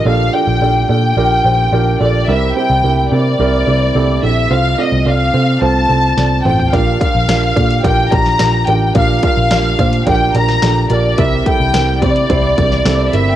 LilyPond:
<<
  \new Staff \with { instrumentName = "Violin section" } { \time 4/4 \key bes \major \tempo 4 = 108 f''8 g''4 g''2 d''8 | e''8 g''4 d''2 e''8 | f''8 ees''8 f''4 a''4. g''8 | f''8 f''4. g''8 bes''4 g''8 |
f''8 f''4. g''8 bes''4 d''8 | e''8 g''4 d''2 e''8 | }
  \new Staff \with { instrumentName = "Felt piano" } { \time 4/4 \key bes \major <d' f' g' a'>8 <d' f' g' a'>8 <d' f' g' a'>8 <d' f' g' a'>8 <d' f' g' bes'>8 <d' f' g' c''>8 <d' f' g' bes'>8 <d' f' g' a'>8 | <c' e' g' bes'>8 <c' e' g' c''>8 <c' e' g' bes'>8 <c' e' g' bes'>8 <c' e' g' bes'>8 <c' e' g' bes'>8 <c' e' g' a'>8 <c' e' g' a'>8 | <c' f' a' c''>8 <c' f' a' d''>8 <c' f' a' d''>8 <c' f' a' c''>8 <c' f' a' c''>8 <c' f' a' c''>8 <c' f' a' d''>8 <c' f' a' c''>8 | <d' f' g' bes'>8 <d' f' g' bes'>8 <d' f' g' bes'>8 <d' f' g' a'>8 <d' f' g' bes'>8 <d' f' g' bes'>8 <d' f' g' bes'>8 <d' f' g' bes'>8 |
<d' f' g' bes'>8 <d' f' g' bes'>8 <d' f' g' bes'>8 <d' f' g' c''>8 <d' f' g' bes'>8 <d' f' g' bes'>8 <d' f' g' a'>8 <d' f' g' bes'>8 | <c' e' g' bes'>8 <c' e' g' a'>8 <c' e' g' bes'>8 <c' e' g' c''>8 <c' e' g' c''>8 <c' e' g' bes'>8 <c' e' g' a'>8 <c' e' g' bes'>8 | }
  \new Staff \with { instrumentName = "Felt piano" } { \clef bass \time 4/4 \key bes \major <bes, f>4. r2 r8 | <c g>4. r2 r8 | c4. r2 r8 | <bes, f>4. r2 r8 |
<bes, f>4. r2 r8 | <c g>4. r2 r8 | }
  \new Staff \with { instrumentName = "Picked electric bass" } { \clef bass \time 4/4 \key bes \major bes,,8 r16 bes,,16 bes,,8 bes,8 bes,,8 bes,,8 bes,,8 bes,,8 | c,8 r16 c,16 c,8 c8 c,8 c,8 c,8 bes,,8 | c,8 r16 c,16 c,8 c8 c,8 c,8 c,8 a,,8 | bes,,8 r16 bes,,16 bes,,8 bes,8 bes,,8 bes,,8 bes,,8 a,,8 |
bes,,8 r16 bes,,16 bes,,8 bes,8 bes,,8 bes,,8 bes,,8 bes,,8 | c,8 r16 c,16 c,8 c8 c,8 c,8 c,8 g,,8 | }
  \new DrumStaff \with { instrumentName = "Drums" } \drummode { \time 4/4 r4 r4 r4 r4 | r4 r4 r4 r4 | r4 r4 r4 sn8 toml16 tomfh16 | <hh bd>8 <hh bd>8 <hh sn>8 <hh bd>16 hh16 <hh bd>8 <hh bd>16 sn16 <hh sn>8 hh8 |
<hh bd>8 <hh bd>8 <hh sn>8 <hh bd>16 hh16 <hh bd>8 hh16 sn16 <hh sn>8 hh8 | <hh bd>8 <hh bd>8 <hh sn>8 <hh bd>16 hh16 <hh bd>8 <hh bd>16 sn16 <hh sn>8 hh8 | }
>>